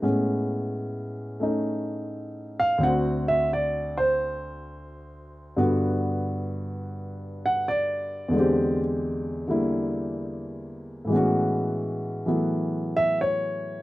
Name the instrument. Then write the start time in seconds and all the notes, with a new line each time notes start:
grand piano
0.02 A2 G#3 B3 C#4
1.40 A3 C#4 D#4
2.60 F5
2.78 D2 D3 C4
2.83 F#4 F#5
3.28 E5
3.53 D5
3.98 C5
5.57 G2 D3 B3 F#4
7.46 F#5
7.68 D5
8.28 E2 D3
8.34 G#3 C4
8.40 G4
9.48 D3 G3 A#3 E4
11.05 A2 E3
11.10 G#3 B3
11.14 C#4 F#4
12.26 E3 F#3 A3 B3 E4
12.97 E5
13.21 C#5